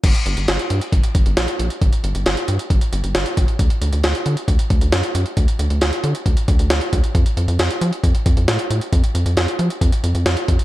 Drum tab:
CC |x---------------|----------------|----------------|----------------|
HH |xxxxxxxxxxxxxxxx|xxxxxxxxxxxxxxxx|xxxxxxxxxxxxxxxx|xxxxxxxxxxxxxxxx|
SD |----o-------o---|----o-------o---|----o-------o---|----o-------o---|
BD |o-------o-o-----|o-------o-----o-|o-------o-o-----|o-------o-o---o-|

CC |----------------|----------------|
HH |xxxxxxxxxxxxxxxx|xxxxxxxxxxxxxxxx|
SD |----o-------o---|----o-------o---|
BD |o-------o-o-----|o-------o-----o-|